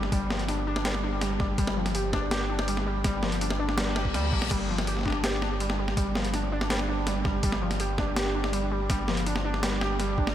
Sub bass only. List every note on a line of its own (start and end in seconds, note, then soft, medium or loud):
0.00 0.11 G1 loud
0.12 1.57 G1 loud
1.58 3.03 G1 loud
3.04 4.16 G1 loud
4.14 4.34 D2 medium
4.33 4.49 A#1 medium
4.51 5.96 G1 loud
5.97 7.42 G1 loud
7.43 8.89 G1 loud
8.90 10.35 G1 loud